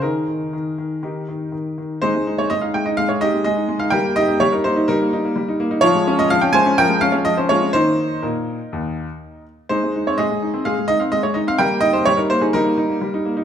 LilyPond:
<<
  \new Staff \with { instrumentName = "Grand piano" } { \time 4/4 \key aes \major \tempo 4 = 126 << { bes'2. r4 | <ees' c''>8. des''16 ees''16 f''16 g''16 ees''16 f''16 des''16 <g' ees''>8 <aes' ees''>8. f''16 | <bes' g''>8 <g' ees''>8 des''16 bes'16 <ees' c''>8 <ees' bes'>2 | <f' des''>8. ees''16 f''16 g''16 <c'' aes''>8 <bes' g''>8 f''16 des''16 ees''16 c''16 <f' des''>8 |
<ees' c''>4 <ees' bes'>2~ <ees' bes'>8 r8 | <ees' c''>8. des''16 <aes' ees''>4 <aes' f''>8 ees''16 f''16 ees''16 des''16 ees''16 f''16 | <bes' g''>8 ees''16 c''16 des''16 bes'16 c''16 aes'16 <ees' bes'>2 | } \\ { <ees' aes'>2 <ees' g'>2 | r1 | r1 | r1 |
r1 | r1 | r1 | } >> }
  \new Staff \with { instrumentName = "Grand piano" } { \clef bass \time 4/4 \key aes \major ees8 ees8 ees8 ees8 ees8 ees8 ees8 ees8 | aes16 aes16 ees'16 aes16 aes16 ees'16 aes16 ees'16 aes16 aes16 ees'16 aes16 aes16 ees'16 aes16 ees'16 | g16 bes16 ees'16 bes16 g16 ees'16 bes16 ees'16 g16 bes16 ees'16 bes16 g16 ees'16 bes16 ees'16 | f16 aes16 des'16 aes16 f16 des'16 aes16 des'16 f16 aes16 des'16 aes16 f16 des'16 aes16 des'16 |
<ees bes>4 bes,4 ees,4 r4 | aes16 aes16 ees'16 c'16 aes16 aes16 ees'16 c'16 aes16 aes16 ees'16 c'16 aes16 aes16 ees'16 c'16 | g16 bes16 ees'16 bes16 g16 ees'16 bes16 ees'16 g16 bes16 ees'16 bes16 g16 ees'16 bes16 ees'16 | }
>>